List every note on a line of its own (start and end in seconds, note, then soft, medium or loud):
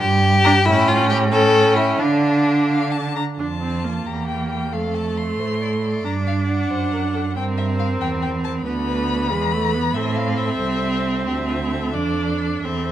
0.00 0.55 G2 medium
0.00 0.67 G4 loud
0.44 0.55 D4 medium
0.44 0.55 A#5 medium
0.66 1.96 A2 medium
0.66 1.29 C#4 medium
0.66 0.89 E4 loud
0.66 1.29 G5 medium
0.88 1.09 F4 loud
1.09 1.17 G4 loud
1.32 2.02 C#4 medium
1.32 1.78 A4 loud
1.32 2.01 G5 medium
1.76 2.01 E4 medium
1.99 3.16 D3 medium
1.99 3.16 D4 medium
1.99 3.18 D4 medium
1.99 2.64 F5 medium
2.69 2.93 F5 medium
2.92 3.15 A5 medium
3.16 3.24 A#5 medium
3.39 4.02 F2 soft
3.39 3.47 D4 soft
3.39 4.08 F4 soft
3.39 4.07 A5 soft
3.61 3.86 C4 soft
3.84 4.74 A#3 soft
4.06 4.74 E2 soft
4.06 4.72 G4 soft
4.06 4.27 A#5 soft
4.28 4.50 G5 soft
4.50 4.74 G5 soft
4.73 5.38 F2 soft
4.73 6.06 A3 soft
4.73 5.40 A4 soft
4.73 4.96 F5 soft
4.94 5.19 A5 soft
5.17 6.04 C6 soft
5.39 6.03 A2 soft
5.39 5.60 C5 soft
5.61 5.69 D5 soft
5.82 6.72 D5 soft
6.04 6.69 G2 medium
6.04 7.38 D4 soft
6.04 6.13 A#5 soft
6.27 6.35 F5 medium
6.49 7.35 F#5 soft
6.70 7.37 F#2 medium
6.70 6.92 C5 medium
6.92 7.00 A#4 medium
7.14 7.22 A4 medium
7.35 8.00 G2 medium
7.35 8.65 C4 medium
7.35 8.63 A#4 medium
7.35 7.44 G5 medium
7.57 7.65 E5 medium
7.79 7.87 F5 medium
8.00 8.64 E2 medium
8.00 8.09 G5 medium
8.22 8.30 G5 medium
8.44 8.52 A5 medium
8.65 9.32 D2 medium
8.65 9.32 B3 medium
8.65 8.73 B4 medium
8.65 9.96 B5 medium
8.87 9.08 B4 medium
9.09 9.97 B4 medium
9.31 9.94 E2 medium
9.31 9.54 G#3 medium
9.52 9.76 A3 medium
9.74 9.97 B3 medium
9.95 10.59 A2 medium
9.95 11.94 C4 medium
9.95 11.26 A4 medium
9.95 10.18 E5 medium
10.16 10.39 F5 medium
10.38 11.26 E5 medium
10.60 11.28 C2 medium
11.26 11.95 D2 medium
11.26 11.35 G4 medium
11.26 11.96 E5 medium
11.49 11.57 F4 medium
11.71 12.62 A4 medium
11.94 12.63 F2 medium
11.94 12.66 D4 medium
11.94 12.63 D5 medium
12.63 12.92 E2 medium
12.63 12.92 C4 soft
12.63 12.92 A4 soft
12.63 12.92 E5 soft